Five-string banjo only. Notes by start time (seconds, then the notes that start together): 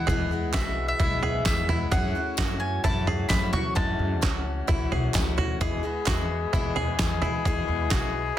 0.07 G#4
0.54 F#4
1.00 E4
1.23 G#4
1.69 E4
1.92 G#4
2.38 F#4
2.85 E4
3.07 G#4
3.54 F#4
3.77 G#3
4.23 F#4
4.68 E4
4.92 G#4
5.38 F#4
5.61 G#4
6.07 F#4
6.53 E4
6.76 G#4
7.22 E4
7.46 G#4
7.91 F#4